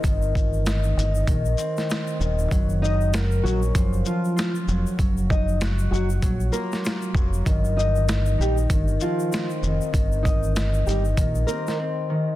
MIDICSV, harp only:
0, 0, Header, 1, 2, 480
1, 0, Start_track
1, 0, Tempo, 618557
1, 33, Time_signature, 4, 2, 24, 8
1, 9588, End_track
2, 0, Start_track
2, 0, Title_t, "Harp"
2, 0, Program_c, 0, 46
2, 0, Note_on_c, 0, 60, 90
2, 0, Note_on_c, 0, 63, 90
2, 23, Note_on_c, 0, 51, 88
2, 517, Note_off_c, 0, 63, 0
2, 520, Note_on_c, 0, 63, 88
2, 753, Note_off_c, 0, 63, 0
2, 756, Note_on_c, 0, 63, 89
2, 979, Note_off_c, 0, 51, 0
2, 988, Note_on_c, 0, 51, 97
2, 1222, Note_off_c, 0, 60, 0
2, 1225, Note_on_c, 0, 60, 87
2, 1467, Note_off_c, 0, 60, 0
2, 1470, Note_on_c, 0, 60, 85
2, 1696, Note_off_c, 0, 51, 0
2, 1706, Note_on_c, 0, 51, 77
2, 1952, Note_on_c, 0, 54, 99
2, 1992, Note_off_c, 0, 51, 0
2, 2430, Note_on_c, 0, 70, 87
2, 2671, Note_on_c, 0, 61, 87
2, 2717, Note_off_c, 0, 60, 0
2, 2854, Note_off_c, 0, 63, 0
2, 2906, Note_on_c, 0, 53, 95
2, 3152, Note_on_c, 0, 65, 77
2, 3383, Note_off_c, 0, 65, 0
2, 3386, Note_on_c, 0, 65, 95
2, 3623, Note_off_c, 0, 54, 0
2, 3632, Note_on_c, 0, 54, 79
2, 3862, Note_off_c, 0, 54, 0
2, 3872, Note_on_c, 0, 54, 91
2, 4076, Note_off_c, 0, 70, 0
2, 4356, Note_on_c, 0, 66, 90
2, 4403, Note_off_c, 0, 65, 0
2, 4597, Note_off_c, 0, 66, 0
2, 4600, Note_on_c, 0, 66, 88
2, 4825, Note_off_c, 0, 54, 0
2, 4834, Note_on_c, 0, 54, 95
2, 4920, Note_off_c, 0, 61, 0
2, 5058, Note_on_c, 0, 65, 88
2, 5311, Note_off_c, 0, 65, 0
2, 5314, Note_on_c, 0, 65, 89
2, 5553, Note_off_c, 0, 54, 0
2, 5562, Note_on_c, 0, 54, 83
2, 5783, Note_on_c, 0, 51, 97
2, 5832, Note_off_c, 0, 53, 0
2, 5832, Note_off_c, 0, 54, 0
2, 6269, Note_on_c, 0, 63, 89
2, 6491, Note_off_c, 0, 66, 0
2, 6500, Note_off_c, 0, 63, 0
2, 6503, Note_on_c, 0, 63, 90
2, 6746, Note_off_c, 0, 51, 0
2, 6755, Note_on_c, 0, 51, 88
2, 6990, Note_on_c, 0, 60, 87
2, 7230, Note_off_c, 0, 60, 0
2, 7233, Note_on_c, 0, 60, 89
2, 7272, Note_off_c, 0, 65, 0
2, 7464, Note_off_c, 0, 51, 0
2, 7473, Note_on_c, 0, 51, 86
2, 7692, Note_off_c, 0, 51, 0
2, 7702, Note_on_c, 0, 51, 92
2, 8195, Note_off_c, 0, 63, 0
2, 8198, Note_on_c, 0, 63, 84
2, 8435, Note_off_c, 0, 63, 0
2, 8438, Note_on_c, 0, 63, 90
2, 8659, Note_off_c, 0, 51, 0
2, 8668, Note_on_c, 0, 51, 94
2, 8902, Note_off_c, 0, 60, 0
2, 8905, Note_on_c, 0, 60, 85
2, 9146, Note_off_c, 0, 60, 0
2, 9149, Note_on_c, 0, 60, 86
2, 9379, Note_off_c, 0, 51, 0
2, 9388, Note_on_c, 0, 51, 74
2, 9588, Note_off_c, 0, 51, 0
2, 9588, Note_off_c, 0, 60, 0
2, 9588, Note_off_c, 0, 63, 0
2, 9588, End_track
0, 0, End_of_file